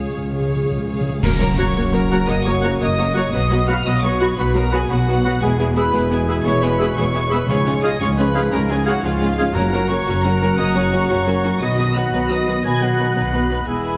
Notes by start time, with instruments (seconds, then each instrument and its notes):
Already playing: cello section C#2, double bass section C#2, french horn section G#3 F4, viola section G#4, violin section C#5 F5
0.02 timpani C#3
0.09 timpani C#3
0.16 cello section C#2, double bass section C#2, timpani C#3
0.25 timpani C#3
0.32 timpani C#3, viola section G#4, violin section C#5 F5
0.40 timpani C#3
0.48 timpani C#3
0.55 timpani C#3
0.63 timpani C#3
0.70 cello section C#2, double bass section C#2, timpani C#3
0.78 timpani C#3
0.85 timpani C#3, viola section G#4, violin section C#5 F5
0.93 timpani C#3
1.01 timpani C#3
1.09 timpani C#3
1.23 double bass section F#1, timpani F#2, cello section F#2, trombone section C#3 F#3, viola section F#3 A#3, french horn section A#3 F#4, violin section A#4 C#5 A#5, trumpet section A#4, concert bass drum, crash
1.40 viola section F#3 A#3, violin section A#4 C#5 A#5, trumpet section A#4
1.58 viola section F#3 A#3, clarinet F#4, violin section A#4 C#5 C#6, trumpet section C#5, oboe F#5, flute section A#5
1.76 double bass section F#1, cello section F#2, viola section F#3 A#3, violin section A#4 C#5
1.93 viola section F#3 A#3, violin section A#4 C#5 A#5, trumpet section A#4
2.10 viola section F#3 A#3, clarinet F#4, violin section A#4 C#5, oboe F#5, flute section A#5
2.28 double bass section F#1, cello section F#2, viola section F#3 A#3, violin section A#4 C#5 D#6, trumpet section D#5
2.46 viola section F#3 A#3, violin section A#4 C#5 C#6, trumpet section C#5
2.61 viola section F#3 A#3, clarinet F#4, violin section A#4 C#5, oboe F#5, flute section A#5
2.80 double bass section F#1, cello section F#2, viola section F#3 A#3, violin section A#4 C#5 D#6, trumpet section D#5
2.98 viola section F#3 A#3, violin section A#4 C#5
3.14 viola section F#3 A#3, clarinet F#4, violin section A#4 C#5 C#6, trumpet section C#5, oboe F#5, flute section A#5
3.32 double bass section B1, cello section B2, trombone section B2 F#3, viola section F#3 B3, french horn section B3 F#4, violin section F#4 B4 D#6, trumpet section D#5
3.51 viola section F#3 B3, violin section F#4 B4
3.67 viola section F#3 B3, clarinet F#4, violin section F#4 B4 F6, trumpet section F5, oboe F#5, flute section B5
3.84 double bass section B1, cello section B2, trombone section B2 F#3, viola section F#3 B3, french horn section B3 F#4, violin section F#4 B4 D#6, trumpet section D#5
4.02 viola section F#3 B3, violin section F#4 B4 C#6, trumpet section C#5
4.20 viola section F#3 B3, violin section F#4 B4, clarinet F#4, oboe F#5, flute section B5
4.36 double bass section B1, cello section B2, trombone section B2 F#3, viola section F#3 B3, french horn section B3 F#4, violin section F#4 B4 B5, trumpet section B4
4.54 viola section F#3 B3, violin section F#4 B4 A#5, trumpet section A#4
4.71 viola section F#3 B3, clarinet F#4, violin section F#4 B4 G#5, trumpet section G#4, oboe F#5, flute section B5
4.89 double bass section B1, cello section B2, trombone section B2 F#3, viola section F#3 B3, french horn section B3 F#4, trumpet section F#4, violin section F#4 B4 F#5
5.07 viola section F#3 B3, violin section F#4 B4
5.24 viola section F#3 B3, clarinet F#4, violin section F#4 B4, oboe F#5, flute section B5
5.41 double bass section E1, cello section E2, trombone section B2 E3, french horn section G#3 G#4, viola section G#3 B3, violin section E4 G#4 G#5, trumpet section G#4
5.59 viola section G#3 B3, violin section E4 G#4 G#5, trumpet section G#4
5.76 viola section G#3 B3, violin section E4 G#4 B5, clarinet G#4, trumpet section B4, oboe E5, flute section B5
5.93 double bass section E1, cello section E2, viola section G#3 B3, violin section E4 G#4
6.11 viola section G#3 B3, violin section E4 G#4 G#5, trumpet section G#4
6.28 viola section G#3 B3, violin section E4 G#4, clarinet G#4, oboe E5, flute section B5
6.45 double bass section E1, cello section E2, viola section G#3 B3, violin section E4 G#4 C#6, trumpet section C#5
6.62 viola section G#3 B3, violin section E4 G#4 B5, trumpet section B4
6.78 viola section G#3 B3, violin section E4 G#4, clarinet G#4, oboe E5, flute section B5
6.97 double bass section E1, cello section E2, viola section G#3 B3, violin section E4 G#4 C#6, trumpet section C#5
7.14 viola section G#3 B3, violin section E4 G#4
7.30 viola section G#3 B3, violin section E4 G#4 B5, clarinet G#4, trumpet section B4, oboe E5, flute section B5
7.48 cello section C#2, double bass section C#2, trombone section G#2 F3, timpani C#3, french horn section G#3 G#4, viola section G#3 C#4, violin section F4 G#4 C#6, trumpet section C#5
7.66 viola section G#3 C#4, violin section F4 G#4
7.82 viola section G#3 C#4, violin section F4 G#4 D#6, clarinet G#4, trumpet section D#5, oboe F5, flute section G#6
7.99 cello section C#2, double bass section C#2, trombone section G#2 F3, french horn section G#3 G#4, viola section G#3 C#4, violin section F4 G#4 C#6, trumpet section C#5
8.17 viola section G#3 C#4, violin section F4 G#4 B5, trumpet section B4
8.35 viola section G#3 C#4, violin section F4 G#4, clarinet G#4, oboe F5, flute section G#6
8.52 cello section C#2, double bass section C#2, viola section G#3 C#4, violin section F4 G#4 A#5, trumpet section A#4
8.69 viola section G#3 C#4, violin section F4 G#4 G#5, trumpet section G#4
8.86 viola section G#3 C#4, violin section F4 G#4 F#5, trumpet section F#4, clarinet G#4, oboe F5, flute section G#6
9.03 double bass section C#2, cello section C#2, trombone section G#2 F3, french horn section G#3 G#4, viola section G#3 C#4, trumpet section F4, violin section F4 G#4 F5
9.21 viola section G#3 C#4, violin section F4 G#4
9.38 viola section G#3 C#4, violin section F4 G#4, clarinet G#4, oboe F5, flute section G#6
9.54 double bass section F#1, cello section F#2, timpani F#2, trombone section C#3 F#3, viola section F#3 C#4, french horn section A#3 F#4, clarinet F#4, violin section F#4 A#4 A#5, trumpet section A#4, oboe F#5, flute section A#5
9.72 viola section F#3 C#4, violin section F#4 A#4 A#5, trumpet section A#4
9.88 viola section F#3 C#4, violin section F#4 A#4 C#6, trumpet section C#5
10.06 double bass section F#1, cello section F#2, viola section F#3 C#4, violin section F#4 A#4
10.24 viola section F#3 C#4, violin section F#4 A#4 A#5, trumpet section A#4
10.42 viola section F#3 C#4, violin section F#4 A#4
10.58 double bass section F#1, cello section F#2, viola section F#3 C#4, violin section F#4 A#4 D#6, trumpet section D#5
10.75 viola section F#3 C#4, violin section F#4 A#4 C#6, trumpet section C#5
10.92 viola section F#3 C#4, violin section F#4 A#4
11.09 double bass section F#1, cello section F#2, viola section F#3 C#4, violin section F#4 A#4
11.26 viola section F#3 C#4, violin section F#4 A#4
11.44 viola section F#3 C#4, violin section F#4 A#4
11.61 double bass section B1, cello section B2, trombone section D#3, viola section F#3 B3, french horn section B3, violin section D#4 B4 D#6, oboe D#5, trumpet section D#5, flute section B5
11.77 viola section F#3 B3, violin section D#4 B4 D#6, trumpet section D#5
11.96 viola section F#3 B3, violin section D#4 B4 F#6, trumpet section F#5
12.13 double bass section B1, cello section B2, viola section F#3 B3, violin section D#4 B4
12.30 viola section F#3 B3, violin section D#4 B4 D#6, trumpet section D#5
12.48 viola section F#3 B3, violin section D#4 B4
12.65 double bass section B1, cello section B2, viola section F#3 B3, violin section D#4 B4 G#6, trumpet section G#5
12.81 viola section F#3 B3, violin section D#4 B4 F#6, trumpet section F#5
12.98 viola section F#3 B3, violin section D#4 B4
13.15 double bass section B1, cello section B2, viola section F#3 B3, violin section D#4 B4
13.33 viola section F#3 B3, violin section D#4 B4
13.50 viola section F#3 B3, violin section D#4 B4
13.66 double bass section E1, cello section E2, trombone section E3 G#3, viola section G#3 B3, french horn section B3 E4, violin section E4 G#4 G#5, trumpet section G#4, clarinet G#4, oboe E5
13.84 trumpet section G#4, violin section G#5